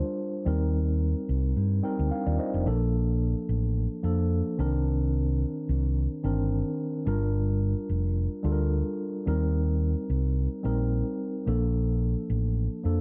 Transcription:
Already playing: tine electric piano G3 D4 F4 A#4 C5
0.45 fingered electric bass D#2, tine electric piano G3 C4 D#4 A#4
1.29 fingered electric bass C2
1.56 fingered electric bass G2
1.82 tine electric piano G3 C4 D#4 A#4 G5
1.99 fingered electric bass D2
2.11 tine electric piano D4 A#4 F5
2.27 fingered electric bass D#2, tine electric piano F4 D5
2.39 tine electric piano D#4 C5 D#5
2.54 fingered electric bass F1, tine electric piano D4 A#4
2.65 fingered electric bass A#1, tine electric piano F3 A#3 D4 A4
3.49 fingered electric bass A1
4.03 fingered electric bass F2, tine electric piano F3 A#3 D4 A4
4.58 fingered electric bass C2, tine electric piano D#3 C4 D4 A#4
5.69 fingered electric bass C2
6.23 fingered electric bass G1, tine electric piano D#3 C4 D4 A#4
7.06 fingered electric bass G1, tine electric piano G3 D4 F4 A#4
7.89 fingered electric bass F1
8.43 fingered electric bass D2, tine electric piano G3 D4 F4 A4
8.52 tine electric piano A#4
9.26 fingered electric bass D#2, tine electric piano G3 C4 D#4 A#4
10.10 fingered electric bass C2
10.63 fingered electric bass A#1, tine electric piano G3 C4 D#4 A#4
11.46 fingered electric bass A#1, tine electric piano F3 A#3 D4 A4
12.30 fingered electric bass A1
12.83 fingered electric bass F2, tine electric piano F3 A#3 D4 A4

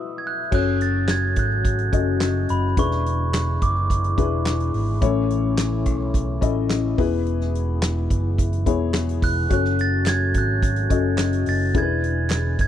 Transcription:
Already playing: felt piano E4 F#4 B4 E5
0.18 glockenspiel G#6
0.27 glockenspiel F#6
0.51 picked electric bass F#1, brass ensemble C#3 F#3 A3 C#4 F#4, felt piano C#4 F#4 A4 C#5, glockenspiel F#6, kick, crash
0.81 glockenspiel A6, closed hi-hat
1.08 glockenspiel G#6, snare, clap, closed hi-hat
1.36 picked electric bass G#1, glockenspiel F#6, kick, closed hi-hat
1.65 kick, closed hi-hat
1.79 closed hi-hat
1.92 picked electric bass F#1, felt piano C#4 F#4 A4 D#5, kick, closed hi-hat
2.21 snare, clap, closed hi-hat
2.49 picked electric bass F#1, glockenspiel B5, closed hi-hat
2.77 picked electric bass E1, brass ensemble D3 E3 G#3 B3 E4, felt piano E3 D4 E4 G#4 B4, glockenspiel C#6, kick, closed hi-hat
2.91 snare
3.06 closed hi-hat
3.34 snare, clap, closed hi-hat
3.62 picked electric bass F#1, glockenspiel D6, kick, closed hi-hat
3.90 kick, closed hi-hat
4.04 closed hi-hat
4.17 picked electric bass E1, felt piano D4 E4 G#4 B4, kick, closed hi-hat
4.46 snare, clap, closed hi-hat
4.60 closed hi-hat
4.74 picked electric bass G#1, open hi-hat
5.01 picked electric bass A1, felt piano A2 C#4 E4 A4 C#5, brass ensemble A2 C#3 C#4, kick, closed hi-hat
5.30 closed hi-hat
5.58 snare, clap, closed hi-hat
5.86 picked electric bass B1, kick, closed hi-hat
6.14 kick, closed hi-hat
6.41 picked electric bass A1, felt piano C#4 E4 A4 D#5, kick, closed hi-hat
6.70 snare, clap, closed hi-hat
6.98 picked electric bass E1, brass ensemble G#2 B2 B3, felt piano E3 B3 E4 G#4 B4, kick, open hi-hat
7.26 closed hi-hat
7.41 snare
7.55 closed hi-hat
7.82 snare, clap, closed hi-hat
8.10 picked electric bass F#1, kick, closed hi-hat
8.38 kick, closed hi-hat
8.53 closed hi-hat
8.66 picked electric bass E1, felt piano B3 E4 G#4 C#5, kick, closed hi-hat
8.94 snare, clap, closed hi-hat
9.09 closed hi-hat
9.22 picked electric bass E1, glockenspiel F#6, kick, open hi-hat
9.49 picked electric bass F#1, brass ensemble C#3 F#3 A3 C#4 F#4, felt piano C#4 F#4 A4 C#5, kick, closed hi-hat
9.54 glockenspiel F#6
9.65 snare
9.79 glockenspiel A6, closed hi-hat
10.06 glockenspiel G#6, snare, clap, closed hi-hat
10.34 picked electric bass G#1, glockenspiel F#6, kick, closed hi-hat
10.62 kick, closed hi-hat
10.76 closed hi-hat
10.90 picked electric bass F#1, felt piano C#4 F#4 A4 D#5, kick, closed hi-hat
11.18 snare, clap, closed hi-hat
11.33 closed hi-hat
11.46 picked electric bass F#1, glockenspiel A6, open hi-hat
11.74 picked electric bass E1, brass ensemble D3 E3 G#3 B3 E4, felt piano E3 D4 E4 G#4 A#4, glockenspiel G#6, kick, closed hi-hat
11.82 felt piano B4
12.04 closed hi-hat
12.30 snare, clap, closed hi-hat
12.59 picked electric bass F#1, glockenspiel G#6, kick, closed hi-hat

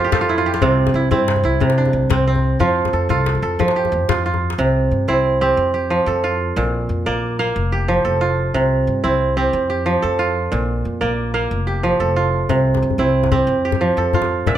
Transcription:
Already playing: upright bass F2, kora F3 F4 A4 A#4 C5 D5
0.04 kora G4
0.12 upright bass F2, kora F4 A4, djembe slap, djembe bass
0.21 kora F4
0.29 kora E4
0.38 kora F4
0.46 kora G4
0.54 kora F4, djembe slap
0.62 upright bass C2, kora C3 C4, djembe bass
0.87 djembe slap, djembe tone
0.94 upright bass C2, kora E4
1.11 upright bass G2, kora C4 E4, djembe bass
1.28 djembe slap
1.36 djembe tone
1.43 upright bass C2, kora E4
1.60 upright bass C3, kora C3, djembe bass
1.70 djembe slap
1.78 kora D4
1.85 djembe tone
1.93 upright bass C2, djembe slap
2.10 upright bass C2, kora C4, djembe slap, djembe bass
2.28 kora C4
2.36 djembe slap, djembe tone
2.59 upright bass F2, kora F3 F4, djembe slap, djembe bass
2.69 djembe slap
2.85 djembe slap, djembe tone
2.93 upright bass F2, kora A4, djembe slap
3.09 upright bass C2, kora F4 A4, djembe slap, djembe bass
3.18 djembe slap
3.26 djembe slap
3.35 djembe slap, djembe tone
3.42 upright bass F2, kora A4
3.59 upright bass F3, kora F3, djembe bass
3.68 djembe slap
3.76 kora G4
3.85 djembe tone
3.92 upright bass F2
4.09 upright bass F2, kora F4, djembe slap, djembe bass
4.18 djembe slap
4.26 kora F4, djembe slap
4.34 djembe slap, djembe tone
4.50 djembe slap
4.58 upright bass C2, kora C3
4.91 upright bass G2
5.08 upright bass C2, kora C4 E4
5.41 kora C4 G4
5.57 upright bass F2
5.74 kora G4
5.90 kora F3
6.06 upright bass F2, kora A4
6.24 kora F4
6.56 upright bass A#1, kora A#2
6.89 upright bass F2
7.06 upright bass A#1, kora A#3 D5
7.39 kora A#3 F5
7.56 upright bass F1
7.72 kora G4
7.88 kora F3
8.05 upright bass F1, kora A4
8.21 kora F4
8.54 upright bass C2, kora C3
8.87 upright bass G2
9.04 upright bass C2, kora C4 E4
9.37 kora C4 G4
9.53 upright bass F2
9.70 kora G4
9.86 kora F3
10.02 upright bass F2, kora A4
10.19 kora F4
10.52 upright bass A#1, kora A#2
10.85 upright bass F2
11.01 upright bass A#1, kora A#3 D5
11.34 kora A#3 F5
11.51 upright bass F1
11.67 kora G4
11.83 kora F3
12.00 upright bass F1, kora A4
12.16 kora F4
12.49 upright bass C2, kora C3, djembe slap, djembe bass
12.58 djembe slap
12.75 djembe slap, djembe tone
12.82 upright bass G2, djembe slap
12.91 djembe bass
12.98 upright bass C2, kora C4 E4
13.23 djembe slap, djembe tone
13.32 kora C4 G4, djembe bass
13.47 upright bass F2
13.65 kora G4
13.72 djembe slap, djembe tone, djembe bass
13.81 kora F3
13.97 upright bass F2, kora A4
14.05 djembe slap
14.13 kora F4, djembe slap, djembe bass
14.22 djembe slap, djembe tone
14.46 upright bass A#1, kora A#2 E5, djembe slap, djembe bass

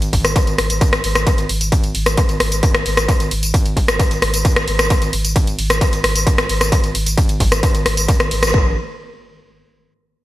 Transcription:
0.02 sub bass G#1, closed hi-hat, ride, tambourine
0.13 sub bass G#1, kick, open hi-hat, ride
0.25 sub bass G#1, cross-stick, closed hi-hat, ride, tambourine
0.36 kick, closed hi-hat, ride, tambourine
0.47 sub bass G#1, closed hi-hat, ride, tambourine
0.58 sub bass G#1, cross-stick, open hi-hat, ride
0.70 sub bass G#1, closed hi-hat, ride, tambourine
0.81 kick, closed hi-hat, ride, tambourine
0.93 sub bass G#1, cross-stick, closed hi-hat, ride, tambourine
1.04 sub bass G#1, open hi-hat, ride
1.15 sub bass G#1, cross-stick, closed hi-hat, ride, tambourine
1.27 kick, closed hi-hat, ride, tambourine
1.38 sub bass G#1, closed hi-hat, ride, tambourine
1.49 sub bass G#1, open hi-hat, ride
1.61 sub bass G#1, closed hi-hat, ride, tambourine
1.72 kick, closed hi-hat, ride, tambourine
1.83 sub bass G#1, closed hi-hat, ride, tambourine
1.95 sub bass G#1, open hi-hat, ride
2.06 sub bass G#1, cross-stick, closed hi-hat, ride, tambourine
2.17 kick, closed hi-hat, ride, tambourine
2.29 sub bass G#1, closed hi-hat, ride, tambourine
2.40 sub bass G#1, cross-stick, open hi-hat, ride
2.52 sub bass G#1, closed hi-hat, ride, tambourine
2.63 kick, closed hi-hat, ride, tambourine
2.74 sub bass G#1, cross-stick, closed hi-hat, ride, tambourine
2.86 sub bass G#1, open hi-hat, ride
2.97 sub bass G#1, cross-stick, closed hi-hat, ride, tambourine
3.08 kick, closed hi-hat, ride, tambourine
3.20 sub bass G#1, closed hi-hat, ride, tambourine
3.31 sub bass G#1, open hi-hat, ride
3.43 sub bass G#1, closed hi-hat, ride, tambourine
3.54 kick, closed hi-hat, ride, tambourine
3.65 sub bass G#1, closed hi-hat, ride, tambourine
3.77 sub bass G#1, kick, open hi-hat, ride
3.88 sub bass G#1, cross-stick, closed hi-hat, ride, tambourine
3.99 kick, closed hi-hat, ride, tambourine
4.11 sub bass G#1, closed hi-hat, ride, tambourine
4.22 sub bass G#1, cross-stick, open hi-hat, ride
4.34 sub bass G#1, closed hi-hat, ride, tambourine
4.45 kick, closed hi-hat, ride, tambourine
4.56 sub bass G#1, cross-stick, closed hi-hat, ride, tambourine
4.68 sub bass G#1, open hi-hat, ride
4.79 sub bass G#1, cross-stick, closed hi-hat, ride, tambourine
4.90 kick, closed hi-hat, ride, tambourine
5.02 sub bass G#1, closed hi-hat, ride, tambourine
5.13 sub bass G#1, open hi-hat, ride
5.24 sub bass G#1, closed hi-hat, ride, tambourine
5.36 kick, closed hi-hat, ride, tambourine
5.47 sub bass G#1, closed hi-hat, ride, tambourine
5.58 sub bass G#1, open hi-hat, ride
5.70 sub bass G#1, cross-stick, closed hi-hat, ride, tambourine
5.81 kick, closed hi-hat, ride, tambourine
5.93 sub bass G#1, closed hi-hat, ride, tambourine
6.04 sub bass G#1, cross-stick, open hi-hat, ride
6.15 sub bass G#1, closed hi-hat, ride, tambourine
6.27 kick, closed hi-hat, ride, tambourine
6.38 sub bass G#1, cross-stick, closed hi-hat, ride, tambourine
6.49 sub bass G#1, open hi-hat, ride
6.61 sub bass G#1, cross-stick, closed hi-hat, ride, tambourine
6.72 kick, closed hi-hat, ride, tambourine
6.83 sub bass G#1, closed hi-hat, ride, tambourine
6.95 sub bass G#1, open hi-hat, ride
7.06 sub bass G#1, closed hi-hat, ride, tambourine
7.18 kick, closed hi-hat, ride, tambourine
7.29 sub bass G#1, closed hi-hat, ride, tambourine
7.40 sub bass G#1, kick, open hi-hat, ride
7.52 sub bass G#1, cross-stick, closed hi-hat, ride, tambourine
7.63 kick, closed hi-hat, ride, tambourine
7.75 sub bass G#1, closed hi-hat, ride, tambourine
7.86 sub bass G#1, cross-stick, open hi-hat, ride
7.97 sub bass G#1, closed hi-hat, ride, tambourine
8.08 kick, closed hi-hat, ride, tambourine
8.20 sub bass G#1, cross-stick, closed hi-hat, ride, tambourine
8.31 sub bass G#1, open hi-hat, ride
8.43 sub bass G#1, cross-stick, open hi-hat, ride, tambourine
8.54 sub bass G#1, kick

